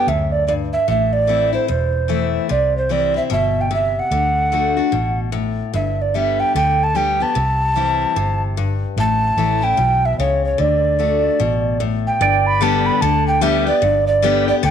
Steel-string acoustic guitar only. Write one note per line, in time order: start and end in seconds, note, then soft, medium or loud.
0.08 0.47 F#2 medium
0.48 0.87 G2 medium
0.88 1.66 A2 medium
1.27 1.52 E3 soft
1.27 1.52 A3 soft
1.27 1.53 C4 medium
1.27 1.51 E4 medium
1.53 1.69 C4 soft
1.53 1.68 E4 soft
1.68 2.47 E2 medium
2.08 2.48 E3 soft
2.08 2.48 A3 medium
2.08 2.49 C4 soft
2.08 2.49 E4 medium
2.49 3.28 C3 medium
2.89 3.14 E3 soft
2.89 3.14 G3 soft
2.89 3.15 C4 medium
2.89 3.13 E4 medium
3.14 3.31 C4 soft
3.14 3.30 E4 soft
3.30 3.69 B2 medium
3.71 4.10 C3 medium
4.11 4.51 D3 medium
4.52 4.76 D3 medium
4.52 4.76 A3 medium
4.52 4.77 D4 soft
4.52 4.75 F#4 soft
4.77 4.93 D4 soft
4.77 4.92 F#4 medium
4.92 5.31 B2 medium
5.32 5.72 A2 medium
5.74 6.52 G2 medium
6.14 6.53 D3 soft
6.14 6.54 G3 soft
6.14 6.54 B3 soft
6.14 6.54 G4 soft
6.56 6.94 D3 medium
6.95 7.19 D3 soft
6.95 7.19 G3 medium
6.95 7.20 B3 medium
6.95 7.19 G4 medium
7.20 7.36 B3 soft
7.20 7.35 G4 soft
7.35 8.13 C3 medium
7.75 8.15 E3 medium
7.75 8.15 G3 soft
7.75 8.15 C4 medium
7.75 8.16 E4 medium
8.16 8.55 C3 medium
8.57 8.96 G2 medium
8.98 9.76 A2 medium
9.38 9.62 E3 medium
9.38 9.62 A3 medium
9.38 9.63 C#4 medium
9.38 9.61 E4 medium
9.62 9.78 C#4 soft
9.62 9.78 E4 medium
9.77 10.17 B2 medium
10.20 10.58 C#3 medium
10.58 10.97 D3 medium
10.99 11.38 D3 soft
10.99 11.39 A3 medium
10.99 11.39 D4 medium
10.99 11.39 F#4 medium
11.40 11.79 B2 medium
11.80 12.19 A2 medium
12.21 12.99 G2 medium
12.61 13.00 D3 medium
12.61 13.01 G3 medium
12.61 13.01 B3 medium
12.61 13.01 G4 medium
13.02 13.40 D3 medium
13.41 13.66 D3 medium
13.41 13.66 G3 medium
13.41 13.66 B3 loud
13.41 13.65 G4 loud
13.67 13.83 B3 soft
13.67 13.82 G4 medium
13.82 14.60 G2 medium
14.22 14.47 D3 medium
14.22 14.47 G3 medium
14.22 14.47 B3 medium
14.22 14.47 G4 medium
14.48 14.64 B3 soft
14.48 14.63 G4 medium
14.63 14.71 D3 loud